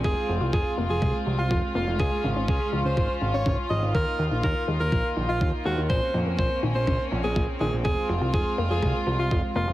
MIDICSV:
0, 0, Header, 1, 6, 480
1, 0, Start_track
1, 0, Tempo, 487805
1, 43, Time_signature, 4, 2, 24, 8
1, 9575, End_track
2, 0, Start_track
2, 0, Title_t, "Alto saxophone"
2, 0, Program_c, 0, 65
2, 45, Note_on_c, 0, 68, 97
2, 336, Note_off_c, 0, 68, 0
2, 525, Note_on_c, 0, 68, 87
2, 743, Note_off_c, 0, 68, 0
2, 887, Note_on_c, 0, 68, 90
2, 1177, Note_off_c, 0, 68, 0
2, 1365, Note_on_c, 0, 65, 90
2, 1583, Note_off_c, 0, 65, 0
2, 1725, Note_on_c, 0, 65, 80
2, 1870, Note_off_c, 0, 65, 0
2, 1964, Note_on_c, 0, 68, 92
2, 2255, Note_off_c, 0, 68, 0
2, 2446, Note_on_c, 0, 68, 87
2, 2663, Note_off_c, 0, 68, 0
2, 2805, Note_on_c, 0, 72, 81
2, 3096, Note_off_c, 0, 72, 0
2, 3285, Note_on_c, 0, 73, 87
2, 3503, Note_off_c, 0, 73, 0
2, 3644, Note_on_c, 0, 75, 81
2, 3790, Note_off_c, 0, 75, 0
2, 3885, Note_on_c, 0, 70, 92
2, 4176, Note_off_c, 0, 70, 0
2, 4366, Note_on_c, 0, 70, 86
2, 4583, Note_off_c, 0, 70, 0
2, 4725, Note_on_c, 0, 70, 87
2, 5016, Note_off_c, 0, 70, 0
2, 5204, Note_on_c, 0, 65, 88
2, 5422, Note_off_c, 0, 65, 0
2, 5563, Note_on_c, 0, 66, 83
2, 5709, Note_off_c, 0, 66, 0
2, 5804, Note_on_c, 0, 72, 96
2, 6095, Note_off_c, 0, 72, 0
2, 6285, Note_on_c, 0, 72, 88
2, 6503, Note_off_c, 0, 72, 0
2, 6645, Note_on_c, 0, 72, 85
2, 6935, Note_off_c, 0, 72, 0
2, 7123, Note_on_c, 0, 68, 90
2, 7342, Note_off_c, 0, 68, 0
2, 7484, Note_on_c, 0, 68, 83
2, 7630, Note_off_c, 0, 68, 0
2, 7724, Note_on_c, 0, 68, 101
2, 8015, Note_off_c, 0, 68, 0
2, 8204, Note_on_c, 0, 68, 93
2, 8422, Note_off_c, 0, 68, 0
2, 8564, Note_on_c, 0, 68, 88
2, 8855, Note_off_c, 0, 68, 0
2, 9045, Note_on_c, 0, 65, 92
2, 9263, Note_off_c, 0, 65, 0
2, 9404, Note_on_c, 0, 65, 83
2, 9550, Note_off_c, 0, 65, 0
2, 9575, End_track
3, 0, Start_track
3, 0, Title_t, "String section"
3, 0, Program_c, 1, 48
3, 0, Note_on_c, 1, 60, 69
3, 43, Note_on_c, 1, 56, 74
3, 43, Note_on_c, 1, 65, 85
3, 1925, Note_off_c, 1, 60, 0
3, 1964, Note_on_c, 1, 61, 71
3, 3845, Note_off_c, 1, 56, 0
3, 3864, Note_off_c, 1, 61, 0
3, 3883, Note_on_c, 1, 58, 78
3, 3883, Note_on_c, 1, 63, 72
3, 5764, Note_off_c, 1, 65, 0
3, 5784, Note_off_c, 1, 63, 0
3, 5804, Note_on_c, 1, 60, 75
3, 5804, Note_on_c, 1, 61, 86
3, 7685, Note_off_c, 1, 58, 0
3, 7705, Note_off_c, 1, 61, 0
3, 7723, Note_on_c, 1, 56, 79
3, 7723, Note_on_c, 1, 65, 88
3, 9575, Note_off_c, 1, 56, 0
3, 9575, Note_off_c, 1, 60, 0
3, 9575, Note_off_c, 1, 65, 0
3, 9575, End_track
4, 0, Start_track
4, 0, Title_t, "Synth arpeggio sound"
4, 0, Program_c, 2, 84
4, 43, Note_on_c, 2, 53, 76
4, 144, Note_off_c, 2, 53, 0
4, 283, Note_on_c, 2, 53, 75
4, 397, Note_off_c, 2, 53, 0
4, 402, Note_on_c, 2, 65, 68
4, 517, Note_off_c, 2, 65, 0
4, 522, Note_on_c, 2, 53, 95
4, 583, Note_off_c, 2, 53, 0
4, 762, Note_on_c, 2, 58, 100
4, 864, Note_off_c, 2, 58, 0
4, 882, Note_on_c, 2, 53, 75
4, 943, Note_off_c, 2, 53, 0
4, 1002, Note_on_c, 2, 56, 82
4, 1104, Note_off_c, 2, 56, 0
4, 1242, Note_on_c, 2, 53, 73
4, 1357, Note_off_c, 2, 53, 0
4, 1363, Note_on_c, 2, 65, 75
4, 1477, Note_off_c, 2, 65, 0
4, 1483, Note_on_c, 2, 53, 101
4, 1544, Note_off_c, 2, 53, 0
4, 1723, Note_on_c, 2, 58, 100
4, 1824, Note_off_c, 2, 58, 0
4, 1843, Note_on_c, 2, 53, 76
4, 1904, Note_off_c, 2, 53, 0
4, 1963, Note_on_c, 2, 49, 79
4, 2064, Note_off_c, 2, 49, 0
4, 2203, Note_on_c, 2, 49, 76
4, 2317, Note_off_c, 2, 49, 0
4, 2323, Note_on_c, 2, 61, 74
4, 2438, Note_off_c, 2, 61, 0
4, 2443, Note_on_c, 2, 49, 94
4, 2504, Note_off_c, 2, 49, 0
4, 2683, Note_on_c, 2, 53, 97
4, 2784, Note_off_c, 2, 53, 0
4, 2803, Note_on_c, 2, 49, 74
4, 2864, Note_off_c, 2, 49, 0
4, 2923, Note_on_c, 2, 53, 81
4, 3024, Note_off_c, 2, 53, 0
4, 3163, Note_on_c, 2, 49, 70
4, 3278, Note_off_c, 2, 49, 0
4, 3284, Note_on_c, 2, 61, 72
4, 3398, Note_off_c, 2, 61, 0
4, 3402, Note_on_c, 2, 49, 99
4, 3464, Note_off_c, 2, 49, 0
4, 3643, Note_on_c, 2, 53, 97
4, 3744, Note_off_c, 2, 53, 0
4, 3763, Note_on_c, 2, 49, 77
4, 3824, Note_off_c, 2, 49, 0
4, 3883, Note_on_c, 2, 51, 80
4, 3984, Note_off_c, 2, 51, 0
4, 4123, Note_on_c, 2, 51, 75
4, 4237, Note_off_c, 2, 51, 0
4, 4243, Note_on_c, 2, 63, 71
4, 4358, Note_off_c, 2, 63, 0
4, 4364, Note_on_c, 2, 51, 94
4, 4424, Note_off_c, 2, 51, 0
4, 4604, Note_on_c, 2, 56, 98
4, 4705, Note_off_c, 2, 56, 0
4, 4724, Note_on_c, 2, 51, 73
4, 4785, Note_off_c, 2, 51, 0
4, 4844, Note_on_c, 2, 53, 83
4, 4945, Note_off_c, 2, 53, 0
4, 5084, Note_on_c, 2, 51, 72
4, 5198, Note_off_c, 2, 51, 0
4, 5203, Note_on_c, 2, 63, 78
4, 5318, Note_off_c, 2, 63, 0
4, 5324, Note_on_c, 2, 51, 98
4, 5384, Note_off_c, 2, 51, 0
4, 5564, Note_on_c, 2, 56, 99
4, 5665, Note_off_c, 2, 56, 0
4, 5684, Note_on_c, 2, 51, 79
4, 5744, Note_off_c, 2, 51, 0
4, 5804, Note_on_c, 2, 46, 76
4, 5905, Note_off_c, 2, 46, 0
4, 6043, Note_on_c, 2, 46, 74
4, 6157, Note_off_c, 2, 46, 0
4, 6163, Note_on_c, 2, 58, 71
4, 6277, Note_off_c, 2, 58, 0
4, 6283, Note_on_c, 2, 46, 96
4, 6344, Note_off_c, 2, 46, 0
4, 6523, Note_on_c, 2, 51, 98
4, 6624, Note_off_c, 2, 51, 0
4, 6643, Note_on_c, 2, 46, 74
4, 6704, Note_off_c, 2, 46, 0
4, 6763, Note_on_c, 2, 49, 85
4, 6864, Note_off_c, 2, 49, 0
4, 7004, Note_on_c, 2, 46, 70
4, 7118, Note_off_c, 2, 46, 0
4, 7123, Note_on_c, 2, 58, 75
4, 7238, Note_off_c, 2, 58, 0
4, 7243, Note_on_c, 2, 46, 101
4, 7304, Note_off_c, 2, 46, 0
4, 7484, Note_on_c, 2, 51, 99
4, 7585, Note_off_c, 2, 51, 0
4, 7603, Note_on_c, 2, 46, 77
4, 7664, Note_off_c, 2, 46, 0
4, 7723, Note_on_c, 2, 53, 80
4, 7824, Note_off_c, 2, 53, 0
4, 7963, Note_on_c, 2, 53, 75
4, 8077, Note_off_c, 2, 53, 0
4, 8083, Note_on_c, 2, 65, 70
4, 8198, Note_off_c, 2, 65, 0
4, 8203, Note_on_c, 2, 53, 95
4, 8264, Note_off_c, 2, 53, 0
4, 8443, Note_on_c, 2, 58, 105
4, 8544, Note_off_c, 2, 58, 0
4, 8564, Note_on_c, 2, 53, 74
4, 8625, Note_off_c, 2, 53, 0
4, 8684, Note_on_c, 2, 56, 84
4, 8785, Note_off_c, 2, 56, 0
4, 8924, Note_on_c, 2, 53, 70
4, 9038, Note_off_c, 2, 53, 0
4, 9045, Note_on_c, 2, 65, 76
4, 9158, Note_off_c, 2, 65, 0
4, 9166, Note_on_c, 2, 53, 104
4, 9225, Note_off_c, 2, 53, 0
4, 9404, Note_on_c, 2, 58, 99
4, 9505, Note_off_c, 2, 58, 0
4, 9525, Note_on_c, 2, 53, 78
4, 9575, Note_off_c, 2, 53, 0
4, 9575, End_track
5, 0, Start_track
5, 0, Title_t, "Analog synth bass"
5, 0, Program_c, 3, 38
5, 43, Note_on_c, 3, 29, 100
5, 151, Note_off_c, 3, 29, 0
5, 284, Note_on_c, 3, 29, 88
5, 392, Note_off_c, 3, 29, 0
5, 404, Note_on_c, 3, 36, 78
5, 511, Note_off_c, 3, 36, 0
5, 523, Note_on_c, 3, 29, 92
5, 631, Note_off_c, 3, 29, 0
5, 764, Note_on_c, 3, 29, 91
5, 871, Note_off_c, 3, 29, 0
5, 884, Note_on_c, 3, 29, 82
5, 991, Note_off_c, 3, 29, 0
5, 1004, Note_on_c, 3, 36, 97
5, 1111, Note_off_c, 3, 36, 0
5, 1244, Note_on_c, 3, 36, 92
5, 1352, Note_off_c, 3, 36, 0
5, 1364, Note_on_c, 3, 36, 77
5, 1471, Note_off_c, 3, 36, 0
5, 1484, Note_on_c, 3, 29, 94
5, 1591, Note_off_c, 3, 29, 0
5, 1724, Note_on_c, 3, 29, 87
5, 1832, Note_off_c, 3, 29, 0
5, 1845, Note_on_c, 3, 29, 79
5, 1952, Note_off_c, 3, 29, 0
5, 1964, Note_on_c, 3, 37, 99
5, 2072, Note_off_c, 3, 37, 0
5, 2204, Note_on_c, 3, 32, 90
5, 2312, Note_off_c, 3, 32, 0
5, 2325, Note_on_c, 3, 32, 78
5, 2432, Note_off_c, 3, 32, 0
5, 2444, Note_on_c, 3, 37, 92
5, 2552, Note_off_c, 3, 37, 0
5, 2684, Note_on_c, 3, 37, 89
5, 2792, Note_off_c, 3, 37, 0
5, 2804, Note_on_c, 3, 37, 78
5, 2912, Note_off_c, 3, 37, 0
5, 2924, Note_on_c, 3, 32, 94
5, 3032, Note_off_c, 3, 32, 0
5, 3165, Note_on_c, 3, 32, 93
5, 3272, Note_off_c, 3, 32, 0
5, 3284, Note_on_c, 3, 32, 74
5, 3392, Note_off_c, 3, 32, 0
5, 3404, Note_on_c, 3, 32, 95
5, 3512, Note_off_c, 3, 32, 0
5, 3644, Note_on_c, 3, 32, 92
5, 3752, Note_off_c, 3, 32, 0
5, 3764, Note_on_c, 3, 32, 77
5, 3871, Note_off_c, 3, 32, 0
5, 3884, Note_on_c, 3, 39, 99
5, 3991, Note_off_c, 3, 39, 0
5, 4124, Note_on_c, 3, 39, 86
5, 4231, Note_off_c, 3, 39, 0
5, 4244, Note_on_c, 3, 34, 77
5, 4351, Note_off_c, 3, 34, 0
5, 4364, Note_on_c, 3, 39, 94
5, 4472, Note_off_c, 3, 39, 0
5, 4604, Note_on_c, 3, 39, 88
5, 4711, Note_off_c, 3, 39, 0
5, 4724, Note_on_c, 3, 39, 78
5, 4832, Note_off_c, 3, 39, 0
5, 4844, Note_on_c, 3, 34, 99
5, 4952, Note_off_c, 3, 34, 0
5, 5085, Note_on_c, 3, 34, 91
5, 5192, Note_off_c, 3, 34, 0
5, 5205, Note_on_c, 3, 34, 77
5, 5312, Note_off_c, 3, 34, 0
5, 5325, Note_on_c, 3, 39, 98
5, 5432, Note_off_c, 3, 39, 0
5, 5564, Note_on_c, 3, 39, 86
5, 5671, Note_off_c, 3, 39, 0
5, 5684, Note_on_c, 3, 39, 77
5, 5791, Note_off_c, 3, 39, 0
5, 5805, Note_on_c, 3, 34, 99
5, 5912, Note_off_c, 3, 34, 0
5, 6044, Note_on_c, 3, 41, 90
5, 6151, Note_off_c, 3, 41, 0
5, 6163, Note_on_c, 3, 41, 76
5, 6271, Note_off_c, 3, 41, 0
5, 6284, Note_on_c, 3, 34, 96
5, 6392, Note_off_c, 3, 34, 0
5, 6524, Note_on_c, 3, 34, 88
5, 6631, Note_off_c, 3, 34, 0
5, 6644, Note_on_c, 3, 34, 80
5, 6751, Note_off_c, 3, 34, 0
5, 6765, Note_on_c, 3, 34, 98
5, 6872, Note_off_c, 3, 34, 0
5, 7003, Note_on_c, 3, 34, 92
5, 7111, Note_off_c, 3, 34, 0
5, 7124, Note_on_c, 3, 34, 78
5, 7231, Note_off_c, 3, 34, 0
5, 7244, Note_on_c, 3, 34, 97
5, 7352, Note_off_c, 3, 34, 0
5, 7483, Note_on_c, 3, 34, 91
5, 7591, Note_off_c, 3, 34, 0
5, 7603, Note_on_c, 3, 34, 78
5, 7711, Note_off_c, 3, 34, 0
5, 7724, Note_on_c, 3, 29, 98
5, 7832, Note_off_c, 3, 29, 0
5, 7963, Note_on_c, 3, 29, 89
5, 8071, Note_off_c, 3, 29, 0
5, 8083, Note_on_c, 3, 36, 76
5, 8191, Note_off_c, 3, 36, 0
5, 8204, Note_on_c, 3, 29, 96
5, 8312, Note_off_c, 3, 29, 0
5, 8443, Note_on_c, 3, 29, 90
5, 8551, Note_off_c, 3, 29, 0
5, 8563, Note_on_c, 3, 29, 77
5, 8671, Note_off_c, 3, 29, 0
5, 8684, Note_on_c, 3, 36, 99
5, 8792, Note_off_c, 3, 36, 0
5, 8924, Note_on_c, 3, 36, 92
5, 9031, Note_off_c, 3, 36, 0
5, 9044, Note_on_c, 3, 36, 76
5, 9151, Note_off_c, 3, 36, 0
5, 9164, Note_on_c, 3, 29, 98
5, 9272, Note_off_c, 3, 29, 0
5, 9404, Note_on_c, 3, 29, 90
5, 9512, Note_off_c, 3, 29, 0
5, 9524, Note_on_c, 3, 29, 78
5, 9575, Note_off_c, 3, 29, 0
5, 9575, End_track
6, 0, Start_track
6, 0, Title_t, "Drums"
6, 43, Note_on_c, 9, 36, 113
6, 142, Note_off_c, 9, 36, 0
6, 283, Note_on_c, 9, 46, 94
6, 381, Note_off_c, 9, 46, 0
6, 523, Note_on_c, 9, 36, 119
6, 622, Note_off_c, 9, 36, 0
6, 763, Note_on_c, 9, 46, 80
6, 862, Note_off_c, 9, 46, 0
6, 1003, Note_on_c, 9, 36, 113
6, 1102, Note_off_c, 9, 36, 0
6, 1243, Note_on_c, 9, 46, 88
6, 1341, Note_off_c, 9, 46, 0
6, 1483, Note_on_c, 9, 36, 117
6, 1582, Note_off_c, 9, 36, 0
6, 1723, Note_on_c, 9, 46, 83
6, 1821, Note_off_c, 9, 46, 0
6, 1964, Note_on_c, 9, 36, 115
6, 2062, Note_off_c, 9, 36, 0
6, 2204, Note_on_c, 9, 46, 97
6, 2302, Note_off_c, 9, 46, 0
6, 2444, Note_on_c, 9, 36, 119
6, 2542, Note_off_c, 9, 36, 0
6, 2683, Note_on_c, 9, 46, 80
6, 2781, Note_off_c, 9, 46, 0
6, 2924, Note_on_c, 9, 36, 117
6, 3022, Note_off_c, 9, 36, 0
6, 3163, Note_on_c, 9, 46, 86
6, 3262, Note_off_c, 9, 46, 0
6, 3404, Note_on_c, 9, 36, 116
6, 3502, Note_off_c, 9, 36, 0
6, 3643, Note_on_c, 9, 46, 84
6, 3741, Note_off_c, 9, 46, 0
6, 3884, Note_on_c, 9, 36, 107
6, 3982, Note_off_c, 9, 36, 0
6, 4123, Note_on_c, 9, 46, 104
6, 4221, Note_off_c, 9, 46, 0
6, 4364, Note_on_c, 9, 36, 110
6, 4462, Note_off_c, 9, 36, 0
6, 4603, Note_on_c, 9, 46, 82
6, 4702, Note_off_c, 9, 46, 0
6, 4844, Note_on_c, 9, 36, 110
6, 4942, Note_off_c, 9, 36, 0
6, 5083, Note_on_c, 9, 46, 93
6, 5182, Note_off_c, 9, 46, 0
6, 5324, Note_on_c, 9, 36, 112
6, 5422, Note_off_c, 9, 36, 0
6, 5564, Note_on_c, 9, 46, 89
6, 5662, Note_off_c, 9, 46, 0
6, 5804, Note_on_c, 9, 36, 102
6, 5902, Note_off_c, 9, 36, 0
6, 6043, Note_on_c, 9, 46, 102
6, 6142, Note_off_c, 9, 46, 0
6, 6284, Note_on_c, 9, 36, 108
6, 6382, Note_off_c, 9, 36, 0
6, 6523, Note_on_c, 9, 46, 90
6, 6621, Note_off_c, 9, 46, 0
6, 6764, Note_on_c, 9, 36, 107
6, 6862, Note_off_c, 9, 36, 0
6, 7003, Note_on_c, 9, 46, 98
6, 7101, Note_off_c, 9, 46, 0
6, 7244, Note_on_c, 9, 36, 111
6, 7342, Note_off_c, 9, 36, 0
6, 7483, Note_on_c, 9, 46, 94
6, 7581, Note_off_c, 9, 46, 0
6, 7724, Note_on_c, 9, 36, 102
6, 7822, Note_off_c, 9, 36, 0
6, 7963, Note_on_c, 9, 46, 111
6, 8062, Note_off_c, 9, 46, 0
6, 8204, Note_on_c, 9, 36, 114
6, 8302, Note_off_c, 9, 36, 0
6, 8443, Note_on_c, 9, 46, 94
6, 8542, Note_off_c, 9, 46, 0
6, 8684, Note_on_c, 9, 36, 108
6, 8782, Note_off_c, 9, 36, 0
6, 8923, Note_on_c, 9, 46, 97
6, 9022, Note_off_c, 9, 46, 0
6, 9164, Note_on_c, 9, 36, 111
6, 9262, Note_off_c, 9, 36, 0
6, 9403, Note_on_c, 9, 46, 90
6, 9502, Note_off_c, 9, 46, 0
6, 9575, End_track
0, 0, End_of_file